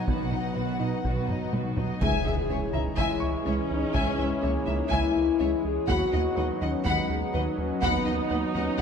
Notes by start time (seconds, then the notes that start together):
Already playing: F#3 D#4 F#4 B4 F#5
0.07 B1 B2 D#3 B3 F#4 B4 F#5, taiko
0.32 B2 F#3 D#4 D#5
0.55 B1 B2 D#3 B3 F#4 B4
0.79 B2 F#3 D#4 D#5
1.04 B1 B2 D#3 B3 F#4 B4, taiko
1.29 B2 F#3 D#4 D#5, taiko low-mid
1.53 B1 B2 D#3 B3 F#4 B4, taiko high
1.77 B2 F#3 D#4 D#5, taiko low
2.01 C#2 C#3 E3 G#3 E4 G#4 C#5 E5 G#5, taiko, impact
2.25 C#2 E3 E5
2.49 C#2 C#4 C#5 E5
2.73 C#2 E3 D#4 E5 A#5
2.97 C#2 C#3 G#3 E4 E5 G#5, taiko
3.20 C#2 C#6
3.45 C#2 C#4 C#5 E5
3.71 C#2 D#4
3.94 C#2 C#3 C#4 E5 G#5, taiko
4.18 C#2 E3 E5
4.42 C#2 A#3 C#4 C#5 E5
4.66 C#2 E3 D#4 E5
4.90 C#2 C#3 E4 E5 G#5, taiko
5.16 C#2
5.39 C#2 G#3 C#4 C#5 E5
5.65 C#2 G#4
5.88 D#2 F#3 B3 D#4 F#4 B4 D#5 F#5 B5, taiko
6.12 D#2 D#4 D#5 F#5
6.36 D#2 B4 D#5 F#5
6.61 D#2 C#4 D#4 D#5 F#5
6.85 D#2 G#3 B3 D#4 B4 F#5 B5, taiko
7.10 D#2
7.33 D#2 F#3 B4 D#5 F#5
7.57 D#2 C#4
7.81 D#2 B3 D#4 F#5 B5, taiko
8.05 D#2 D#4 D#5 F#5
8.30 D#2 B4 D#5 F#5
8.54 D#2 C#4 D#4 D#5 F#5
8.78 D#2 F#5